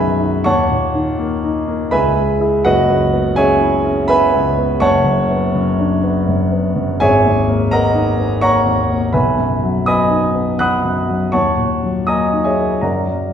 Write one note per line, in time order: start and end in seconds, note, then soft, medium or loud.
0.00 0.41 B1 medium
0.00 0.46 F#2 soft
0.00 0.20 D#3 soft
0.00 0.46 G#3 medium
0.00 0.45 C#4 soft
0.00 0.46 F#4 medium
0.00 0.46 G#4 medium
0.00 0.46 B4 medium
0.00 0.46 C#5 medium
0.00 0.45 D#5 medium
0.00 0.46 E5 medium
0.00 0.46 F#5 medium
0.00 0.46 G#5 medium
0.00 0.44 B5 loud
0.20 0.44 D#3 soft
0.44 1.89 D#2 medium
0.44 1.53 C#5 medium
0.44 1.52 F#5 medium
0.44 1.52 A5 medium
0.44 1.56 C#6 loud
0.70 1.09 A#2 soft
0.95 1.34 D#3 soft
1.19 1.58 A#3 medium
1.44 1.83 D#4 medium
1.68 1.92 A#3 medium
1.91 2.63 C#2 medium
1.91 2.61 B4 medium
1.91 2.61 E5 medium
1.91 2.61 G#5 medium
1.91 2.65 B5 loud
2.16 2.55 G#3 soft
2.40 2.62 E4 soft
2.40 2.63 G#4 medium
2.65 4.78 F#1 medium
2.65 3.35 F#4 medium
2.65 3.34 B4 medium
2.65 3.35 D#5 medium
2.65 3.38 F#5 loud
2.88 3.28 C#2 soft
3.13 3.52 B3 medium
3.36 3.76 C#4 medium
3.36 4.06 G#4 medium
3.36 4.06 C#5 medium
3.36 4.06 E5 medium
3.36 4.08 G#5 loud
3.61 4.00 E4 medium
3.86 4.24 C#4 medium
4.08 4.48 B3 medium
4.08 4.78 B4 medium
4.08 4.77 E5 medium
4.08 4.77 G#5 medium
4.08 4.81 B5 loud
4.34 4.72 C#2 medium
4.58 4.82 B3 medium
4.80 6.97 F#1 medium
4.80 5.88 C#5 medium
4.80 5.87 F#5 medium
4.80 5.88 A5 medium
4.80 5.91 C#6 loud
5.05 5.45 F#2 medium
5.31 5.70 B3 soft
5.55 5.94 F#2 medium
5.79 6.18 D4 medium
6.03 6.42 B3 medium
6.28 6.67 F#2 soft
6.52 6.91 B3 medium
6.76 7.01 F#2 soft
7.00 9.11 G#1 medium
7.00 7.68 G#4 medium
7.00 7.68 C#5 medium
7.00 7.67 E5 medium
7.00 7.71 G#5 loud
7.25 7.62 D#2 soft
7.49 7.86 A#3 soft
7.71 8.10 B3 medium
7.71 8.39 A#4 medium
7.71 8.39 D#5 medium
7.71 8.39 F#5 medium
7.71 8.41 A#5 loud
7.95 8.33 D#4 medium
8.18 8.57 B3 soft
8.41 8.81 A#3 soft
8.41 9.11 C#5 medium
8.41 9.11 F#5 medium
8.41 9.11 A#5 medium
8.41 9.14 C#6 loud
8.65 9.05 D#2 soft
8.89 9.14 A#3 soft
9.13 11.29 B1 medium
9.13 9.83 B4 medium
9.13 9.83 E5 medium
9.13 9.83 G#5 medium
9.13 9.86 B5 medium
9.38 9.77 F#2 soft
9.63 10.02 F#3 soft
9.86 10.26 B3 soft
9.86 10.57 D#5 medium
9.86 10.57 G#5 medium
9.86 10.57 B5 medium
9.86 10.59 D#6 medium
10.10 10.50 D#4 soft
10.35 10.75 B3 soft
10.59 10.99 F#3 soft
10.59 11.29 F#5 medium
10.59 11.29 B5 medium
10.59 11.29 D#6 medium
10.59 11.32 F#6 medium
10.85 11.23 F#2 soft
11.08 11.33 F#3 soft
11.32 12.78 D#2 soft
11.32 12.03 C#5 medium
11.32 12.03 F#5 medium
11.32 12.03 A5 medium
11.32 12.06 C#6 medium
11.58 11.97 A#2 soft
11.83 12.22 F#3 soft
12.07 12.47 A#3 soft
12.07 12.43 D#5 medium
12.07 12.42 G#5 medium
12.07 12.42 A#5 medium
12.07 12.44 D#6 medium
12.33 12.73 D#4 soft
12.44 12.80 G#4 medium
12.44 12.80 C#5 medium
12.44 12.80 E5 medium
12.44 12.82 G#5 medium
12.57 12.82 A#3 soft
12.81 13.33 F#2 soft
12.81 13.33 A#4 soft
12.81 13.33 D5 soft
12.81 13.33 F#5 soft
12.81 13.33 A#5 medium
13.08 13.33 F#3 soft